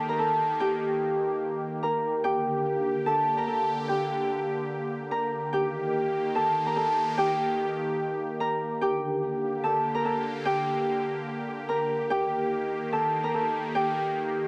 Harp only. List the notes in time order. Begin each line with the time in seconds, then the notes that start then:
Already playing: G4 A4 G5 A5
0.09 A#4 A#5
0.19 A4 A5
0.60 G4 G5
1.83 A#4 A#5
2.24 G4 G5
3.06 A4 A5
3.37 A#4 A#5
3.47 A4 A5
3.88 G4 G5
5.11 A#4 A#5
5.53 G4 G5
6.35 A4 A5
6.66 A#4 A#5
6.76 A4 A5
7.18 G4 G5
8.40 A#4 A#5
8.81 G4 G5
9.64 A4 A5
9.95 A#4 A#5
10.05 A4 A5
10.45 G4 G5
11.69 A#4 A#5
12.10 G4 G5
12.93 A4 A5
13.24 A#4 A#5
13.34 A4 A5
13.75 G4 G5